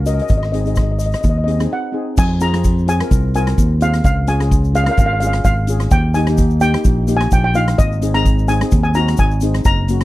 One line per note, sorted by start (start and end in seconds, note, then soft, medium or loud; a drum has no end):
0.00 0.20 C#2 medium
0.06 0.30 C#4 medium
0.06 0.30 F#4 medium
0.06 0.30 A#4 medium
0.06 0.13 D#5 medium
0.06 closed hi-hat medium
0.06 shaker medium
0.14 0.21 D#5 soft
0.19 0.28 D#5 medium
0.19 closed hi-hat medium
0.28 1.14 G#1 medium
0.28 0.36 D#5 soft
0.28 kick loud
0.28 closed hi-hat medium
0.28 shaker medium
0.38 0.44 D#5 medium
0.43 0.51 D#5 soft
0.43 cross-stick medium
0.52 0.61 C4 medium
0.52 0.61 D#4 medium
0.52 0.62 G#4 medium
0.52 0.59 D#5 medium
0.52 closed hi-hat medium
0.60 0.66 D#5 soft
0.65 1.15 C4 medium
0.65 1.15 D#4 medium
0.65 1.15 G#4 medium
0.65 0.74 D#5 soft
0.65 closed hi-hat medium
0.65 shaker soft
0.75 0.81 D#5 soft
0.75 kick medium
0.75 cross-stick medium
0.75 closed hi-hat medium
0.75 shaker medium
0.83 0.90 D#5 soft
0.91 0.98 D#5 soft
0.99 1.05 D#5 soft
0.99 closed hi-hat medium
0.99 shaker medium
1.06 1.13 D#5 soft
1.12 1.20 D#5 soft
1.12 cross-stick medium
1.12 closed hi-hat medium
1.12 shaker soft
1.21 1.66 D#2 medium
1.21 1.28 D#5 soft
1.21 kick medium
1.21 closed hi-hat medium
1.21 shaker medium
1.30 1.36 D#5 medium
1.38 1.43 D#5 soft
1.44 1.54 C4 medium
1.44 1.55 D#4 medium
1.44 1.55 G#4 medium
1.44 1.50 D#5 medium
1.44 closed hi-hat medium
1.51 1.58 D#5 soft
1.59 1.80 C4 medium
1.59 1.81 D#4 medium
1.59 1.81 G#4 medium
1.59 cross-stick medium
1.59 closed hi-hat medium
1.59 shaker soft
1.73 2.20 F#5 medium
1.92 2.17 C4 medium
1.92 2.17 D#4 medium
1.92 2.18 G#4 medium
2.17 3.01 F2 medium
2.17 2.42 G#5 medium
2.17 kick loud
2.17 crash loud
2.17 shaker medium
2.40 2.48 C4 medium
2.40 2.49 F4 medium
2.40 2.49 G#4 medium
2.40 2.90 A#5 medium
2.40 closed hi-hat medium
2.40 shaker medium
2.53 2.74 C4 medium
2.53 2.74 F4 medium
2.53 2.75 G#4 medium
2.53 cross-stick medium
2.53 closed hi-hat medium
2.53 shaker soft
2.64 kick medium
2.64 closed hi-hat medium
2.64 shaker medium
2.78 shaker soft
2.87 2.95 C4 medium
2.87 2.95 F4 medium
2.87 2.96 G#4 medium
2.87 3.34 G#5 medium
2.87 closed hi-hat medium
2.87 shaker medium
3.00 3.21 C4 medium
3.00 3.22 F4 medium
3.00 3.22 A#4 medium
3.00 cross-stick medium
3.00 closed hi-hat medium
3.11 3.53 C2 medium
3.11 kick loud
3.11 closed hi-hat medium
3.11 shaker medium
3.34 3.63 C4 medium
3.34 3.64 F4 medium
3.34 3.64 A#4 medium
3.34 3.83 G#5 medium
3.34 closed hi-hat medium
3.34 shaker medium
3.47 cross-stick medium
3.47 closed hi-hat medium
3.58 4.00 D#2 medium
3.58 kick medium
3.58 closed hi-hat medium
3.58 shaker medium
3.81 4.04 C4 medium
3.81 4.05 F4 medium
3.81 4.05 G#4 medium
3.81 4.04 F5 medium
3.81 closed hi-hat medium
3.81 shaker medium
3.94 cross-stick medium
3.94 closed hi-hat medium
3.94 shaker soft
4.04 4.88 C#2 loud
4.04 4.29 F5 medium
4.04 kick loud
4.04 closed hi-hat medium
4.04 shaker medium
4.27 4.35 C#4 medium
4.27 4.36 F4 medium
4.27 4.36 G#4 medium
4.27 4.76 G#5 medium
4.27 closed hi-hat medium
4.27 shaker medium
4.40 4.61 C#4 medium
4.40 4.62 F4 medium
4.40 4.62 G#4 medium
4.40 cross-stick medium
4.40 closed hi-hat medium
4.40 shaker soft
4.51 kick medium
4.51 closed hi-hat medium
4.51 shaker medium
4.64 shaker soft
4.74 4.82 C#4 medium
4.74 4.82 F4 medium
4.74 4.83 G#4 medium
4.74 4.83 F5 medium
4.74 closed hi-hat medium
4.74 shaker medium
4.84 5.08 C#4 medium
4.84 4.90 F5 medium
4.84 cross-stick medium
4.84 closed hi-hat medium
4.88 5.09 F4 medium
4.88 5.09 A#4 medium
4.88 4.98 F5 medium
4.97 5.40 G#1 medium
4.97 5.05 F5 medium
4.97 kick loud
4.97 closed hi-hat medium
4.97 shaker medium
5.06 5.12 F5 medium
5.13 5.19 F5 medium
5.20 5.50 C#4 medium
5.20 5.50 F4 medium
5.20 5.51 G#4 medium
5.20 5.26 F5 medium
5.20 closed hi-hat medium
5.20 shaker medium
5.27 5.35 F5 medium
5.33 cross-stick medium
5.33 closed hi-hat medium
5.44 5.86 G#1 medium
5.44 5.93 F5 medium
5.44 kick medium
5.44 closed hi-hat medium
5.44 shaker medium
5.67 5.91 C#4 medium
5.67 5.92 F4 medium
5.67 5.92 G#4 medium
5.67 closed hi-hat medium
5.67 shaker medium
5.80 cross-stick medium
5.80 closed hi-hat medium
5.80 shaker soft
5.91 6.75 D#2 loud
5.91 6.16 G5 loud
5.91 kick loud
5.91 closed hi-hat medium
5.91 shaker loud
6.14 6.23 A#3 medium
6.14 6.23 D#4 medium
6.14 6.24 G4 medium
6.14 6.63 G#5 medium
6.14 closed hi-hat medium
6.14 shaker medium
6.27 6.49 A#3 medium
6.27 6.49 D#4 medium
6.27 6.50 G4 medium
6.27 cross-stick medium
6.27 closed hi-hat medium
6.27 shaker soft
6.38 kick medium
6.38 closed hi-hat medium
6.38 shaker medium
6.50 shaker soft
6.61 6.69 A#3 medium
6.61 6.69 D#4 medium
6.61 6.70 G4 medium
6.61 7.05 G5 loud
6.61 closed hi-hat medium
6.61 shaker medium
6.73 6.95 A#3 medium
6.73 6.95 D#4 medium
6.73 6.96 G4 medium
6.73 cross-stick medium
6.73 closed hi-hat medium
6.84 7.27 A#1 medium
6.84 kick loud
6.84 closed hi-hat medium
6.84 shaker medium
7.07 7.36 A#3 medium
7.07 7.37 D#4 medium
7.07 7.37 G4 medium
7.07 closed hi-hat medium
7.07 shaker medium
7.17 7.33 G#5 loud
7.17 cross-stick medium
7.17 closed hi-hat medium
7.31 7.73 A#1 medium
7.31 7.38 G5 medium
7.31 kick medium
7.31 closed hi-hat medium
7.31 shaker medium
7.44 7.56 G5 medium
7.54 7.78 A#3 medium
7.54 7.79 D#4 medium
7.54 7.79 F4 medium
7.54 7.79 F5 medium
7.54 closed hi-hat medium
7.54 shaker medium
7.68 cross-stick medium
7.68 closed hi-hat medium
7.68 shaker soft
7.78 8.62 G#1 loud
7.78 8.16 D#5 loud
7.78 kick loud
7.78 closed hi-hat medium
7.78 shaker medium
7.92 shaker soft
8.02 8.09 C4 medium
8.02 8.10 D#4 medium
8.02 8.10 G#4 medium
8.02 closed hi-hat medium
8.02 shaker medium
8.14 8.35 C4 medium
8.14 8.36 D#4 medium
8.14 8.36 G#4 medium
8.14 8.50 A#5 loud
8.14 cross-stick medium
8.14 closed hi-hat medium
8.14 shaker soft
8.25 kick medium
8.25 closed hi-hat medium
8.25 shaker medium
8.39 shaker soft
8.48 8.56 C4 medium
8.48 8.56 D#4 medium
8.48 8.57 G#4 medium
8.48 8.82 G#5 loud
8.48 closed hi-hat loud
8.48 shaker medium
8.61 8.82 C4 medium
8.61 8.82 D#4 medium
8.61 8.83 G#4 medium
8.61 cross-stick medium
8.61 closed hi-hat medium
8.61 shaker soft
8.71 9.14 D#2 medium
8.71 kick loud
8.71 closed hi-hat medium
8.71 shaker medium
8.83 8.95 G#5 medium
8.83 shaker soft
8.94 9.23 C4 medium
8.94 9.24 D#4 medium
8.94 9.24 F#4 medium
8.94 9.19 A#5 medium
8.94 closed hi-hat medium
8.94 shaker medium
9.08 cross-stick medium
9.08 closed hi-hat medium
9.08 shaker soft
9.17 9.60 G#1 medium
9.17 9.52 G#5 loud
9.17 kick medium
9.17 closed hi-hat medium
9.17 shaker medium
9.31 shaker soft
9.41 9.65 C4 medium
9.41 9.66 D#4 medium
9.41 9.66 G#4 medium
9.41 closed hi-hat medium
9.41 shaker medium
9.54 cross-stick medium
9.54 closed hi-hat medium
9.54 shaker soft
9.65 10.04 F#1 medium
9.65 10.04 A#5 loud
9.65 kick loud
9.65 closed hi-hat medium
9.65 shaker medium
9.88 9.96 A#3 medium
9.88 9.97 C#4 medium
9.88 9.97 F#4 medium
9.88 closed hi-hat medium
9.88 shaker medium
10.01 cross-stick medium
10.01 closed hi-hat medium